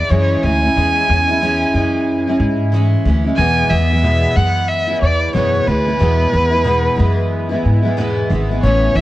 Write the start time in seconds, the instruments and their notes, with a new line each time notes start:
Already playing: violin D5
0.09 upright bass F#2, steel-string acoustic guitar E3 G#3 C#4 E4, violin C#5
0.43 upright bass D2, steel-string acoustic guitar E3 G#3 C#4 E4, violin G#5
0.62 steel-string acoustic guitar G#3 C#4 E4
0.75 upright bass E2, steel-string acoustic guitar E3 G#3 C#4 E4
1.09 upright bass E2, steel-string acoustic guitar E3 G#3 C#4 E4
1.28 steel-string acoustic guitar G#3 C#4 E4
1.41 steel-string acoustic guitar E3 G#3 C#4 E4
1.74 upright bass F#2, steel-string acoustic guitar E3 G#3 C#4 E4
2.27 steel-string acoustic guitar G#3 C#4 E4
2.39 upright bass G#2
2.72 steel-string acoustic guitar E3 G#3 C#4 E4
3.05 upright bass D2, steel-string acoustic guitar E3 G#3 C#4 E4
3.25 steel-string acoustic guitar G#3 C#4 E4
3.37 steel-string acoustic guitar E2 B2 E3 G#3 B3 E4, upright bass E2, violin G#5
3.70 upright bass E2, steel-string acoustic guitar E3 G#3 B3 E4, violin E5
3.90 steel-string acoustic guitar E3 G#3 B3 E4
4.02 steel-string acoustic guitar E2 B2 E3 G#3 B3 E4
4.36 upright bass F#2, steel-string acoustic guitar E3 G#3 B3 E4, violin F#5
4.68 violin E5
4.88 steel-string acoustic guitar E3 G#3 B3 E4
5.01 upright bass E2, violin D5
5.33 steel-string acoustic guitar E2 B2 E3 G#3 B3 E4, upright bass F#2, violin C#5
5.65 upright bass D2, steel-string acoustic guitar E3 G#3 B3 E4, violin B4
5.86 steel-string acoustic guitar E3 G#3 B3 E4
5.98 steel-string acoustic guitar E2 B2 E3 G#3 B3 E4, upright bass E2
6.32 upright bass E2, steel-string acoustic guitar E3 G#3 B3 E4
6.50 steel-string acoustic guitar E3 G#3 B3 E4
6.64 steel-string acoustic guitar E2 B2 E3 G#3 B3 E4
6.96 upright bass F#2, steel-string acoustic guitar E3 G#3 B3 E4
7.49 steel-string acoustic guitar E3 G#3 B3 E4
7.65 upright bass G#2
7.82 steel-string acoustic guitar E3 G#3 B3 E4
7.97 steel-string acoustic guitar E2 B2 E3 G#3 B3 E4
8.30 upright bass G#1, steel-string acoustic guitar E3 G#3 B3 E4
8.49 steel-string acoustic guitar E3 G#3 B3 E4
8.62 upright bass A1, steel-string acoustic guitar A2 E3 B3 C#4 E4, violin C#5
8.95 upright bass A1, steel-string acoustic guitar E3 B3 C#4, violin E5